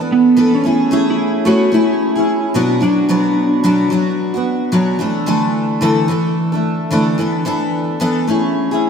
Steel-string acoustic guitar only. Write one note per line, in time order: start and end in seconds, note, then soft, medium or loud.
0.00 0.36 B3 soft
0.00 0.37 D4 soft
0.00 0.36 A4 medium
0.37 0.63 E3 medium
0.37 0.64 B3 medium
0.37 0.65 D4 medium
0.37 0.65 A4 medium
0.64 0.90 A3 medium
0.64 0.91 C#4 medium
0.64 0.91 E4 medium
0.64 0.92 G#4 medium
0.91 1.44 A3 medium
0.91 1.45 C#4 medium
0.91 1.45 E4 medium
0.91 1.46 G#4 medium
1.45 1.70 A3 medium
1.45 1.72 C#4 medium
1.45 1.73 E4 medium
1.45 1.74 G#4 medium
1.72 2.16 A3 medium
1.72 2.17 C#4 medium
1.72 2.16 E4 medium
1.72 2.14 G#4 medium
2.16 2.55 C#4 soft
2.16 2.55 E4 medium
2.16 2.54 G#4 medium
2.54 2.82 B2 medium
2.54 2.79 F#3 medium
2.54 2.81 B3 loud
2.54 2.82 D4 loud
2.54 2.83 F#4 loud
2.81 3.08 F#3 medium
2.81 3.09 B3 medium
2.81 3.09 D4 medium
2.81 3.10 F#4 medium
3.09 3.62 B2 medium
3.09 3.63 F#3 medium
3.09 3.63 B3 medium
3.09 3.65 D4 medium
3.09 3.65 F#4 medium
3.64 3.91 B2 medium
3.64 3.89 F#3 medium
3.64 3.90 B3 loud
3.64 3.91 D4 loud
3.64 3.92 F#4 loud
3.90 4.34 F#3 medium
3.90 4.35 B3 medium
3.90 4.34 D4 medium
3.90 4.33 F#4 medium
4.34 4.72 B3 medium
4.34 4.72 D4 medium
4.34 4.73 F#4 medium
4.72 5.00 B2 loud
4.72 4.98 F#3 medium
4.72 5.00 B3 medium
4.72 5.00 D4 medium
4.72 5.01 F#4 medium
4.99 5.26 E3 medium
4.99 5.27 A3 medium
4.99 5.27 D4 medium
4.99 5.27 A4 medium
5.26 5.80 D3 medium
5.26 5.81 E3 medium
5.26 5.82 A3 loud
5.26 5.82 D4 medium
5.26 5.83 A4 loud
5.81 6.09 D3 medium
5.81 6.07 E3 loud
5.81 6.08 A3 loud
5.81 6.09 D4 medium
5.81 6.10 A4 loud
6.08 6.52 E3 medium
6.08 6.53 A3 medium
6.08 6.52 D4 medium
6.08 6.51 A4 medium
6.52 6.91 A3 medium
6.52 6.91 D4 medium
6.52 6.91 A4 medium
6.91 7.18 D3 medium
6.91 7.17 E3 medium
6.91 7.19 A3 medium
6.91 7.19 D4 loud
6.91 7.20 A4 medium
7.18 7.44 E3 medium
7.18 7.44 B3 medium
7.18 7.45 D4 medium
7.18 7.46 A4 medium
7.45 7.99 E3 medium
7.45 8.00 B3 medium
7.45 8.00 D4 loud
7.45 8.02 A4 loud
8.00 8.27 E3 medium
8.00 8.28 B3 loud
8.00 8.28 D4 loud
8.00 8.29 A4 loud
8.27 8.72 A3 medium
8.27 8.72 C#4 medium
8.27 8.72 E4 medium
8.27 8.70 G#4 medium
8.71 8.90 C#4 medium
8.71 8.90 E4 medium
8.71 8.90 G#4 medium